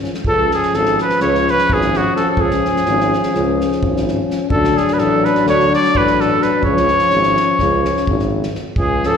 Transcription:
0.01 F3 C#4, snare
0.14 snare
0.25 C#2 F3 C#4 A4, kick
0.51 G#4, snare
0.55 G#4
0.62 snare
0.73 G#1 A4, snare
0.77 A4
0.85 snare
0.98 B4, snare
1.03 B4
1.09 snare
1.20 C#2 C#5, snare
1.26 C#5
1.34 snare
1.48 B4, snare
1.53 B4
1.58 snare
1.70 G#1 G#4, kick
1.75 G#4
1.81 snare
1.93 F#4, snare
2.00 F#4
2.16 A4, snare
2.23 A4
2.30 A4
2.37 C#2 G#4, kick
2.43 G#4
2.50 snare
2.65 snare
2.76 snare
2.85 G#1, snare
3.00 snare
3.13 snare
3.23 snare
3.34 C#2, snare
3.60 snare
3.72 snare
3.82 G#1, kick
3.96 snare
4.08 snare
4.30 snare
4.49 D2 F#3 D4 A4, kick
4.64 snare
4.77 G#4, snare
4.88 snare
4.93 B4
4.98 A1 A4, snare
5.24 B4, snare
5.35 snare
5.46 D2 C#5, snare
5.60 snare
5.72 D5, snare
5.84 snare
5.95 A1 B4, kick
6.07 snare
6.20 A4, snare
6.41 B4, snare
6.61 C#2 F3 C#4 C#5, kick
6.65 C#5
6.77 snare
6.88 snare
6.99 snare
7.10 G#1, snare
7.23 snare
7.37 snare
7.59 C#2, kick, snare
7.85 snare
7.97 snare
8.07 G#1, kick
8.19 snare
8.43 snare
8.55 snare
8.76 C#2 G#4, kick
8.81 G#4
9.03 F3 C#4 A4, snare

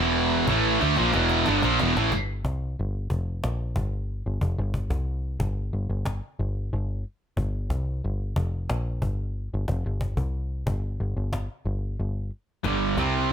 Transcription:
0.00 E1 E2 B2 E3
0.47 A1 A2 E3 A3, cajon bass
0.80 D2 D3 A3, cajon slap
0.96 A#1 A#2 F3, cajon slap
1.12 E1 E2 B2 E3, cajon slap
1.29 cajon slap
1.46 G1 G2 D3, cajon slap
1.62 A#1 A#2 F3, cajon slap
1.79 E1 E2 B2, cajon slap
1.97 A1 A2 E3, cajon slap
2.12 G1, cajon bass
2.44 C2, cajon bass
2.79 G1
3.10 F1, cajon bass
3.44 A#1, cajon slap
3.76 G1, cajon bass
4.26 G1
4.41 F1, cajon bass
4.58 G1
4.74 cajon bass
4.90 C2, cajon bass
5.40 G1, cajon bass
5.73 G1
5.89 G1
6.06 cajon bass, cajon slap
6.39 G1
6.73 G1
7.37 G1, cajon bass
7.70 C2, cajon bass
8.04 G1
8.36 F1, cajon bass
8.70 A#1, cajon slap
9.02 G1, cajon bass
9.54 G1
9.68 F1, cajon bass
9.86 G1
10.01 cajon bass
10.17 C2, cajon bass
10.66 G1, cajon bass
11.00 G1
11.16 G1
11.33 cajon bass, cajon slap
11.65 G1
11.99 G1
12.64 G1 G2 D3 G3, cajon bass
12.97 C2 C3 G3 C4, cajon bass

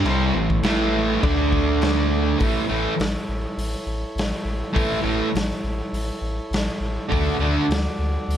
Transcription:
Already playing: E4 A4 C#5
0.04 C2 C3 G3 C4, crash
0.34 A1 A2 E3
0.50 kick
0.63 A1 A2 E3 A3, snare, crash
1.20 D2 D3 A3 D4 A4 D5, kick, crash
1.52 kick
1.82 snare, crash
2.39 A1 A2 E3 A3 E4 A4 C#5, kick, open hi-hat
2.68 A1 A2 E3 A3
2.99 A1, snare, open hi-hat
3.28 A1
3.57 A1, open hi-hat
3.86 A1
4.15 A1, open hi-hat
4.19 snare
4.44 A1
4.73 A1 A2 E3 A3, kick
4.77 open hi-hat
5.01 A1 A2 E3 A3
5.34 A1, snare, open hi-hat
5.63 A1
5.92 A1, open hi-hat
6.21 A1
6.50 A1, snare, open hi-hat
6.80 A1
7.08 D2 D3 A3 D4 F#4 A4 D5
7.12 kick, open hi-hat
7.39 D2 D3 A3 D4
7.69 D2, snare, open hi-hat
7.98 D2
8.28 D2, open hi-hat

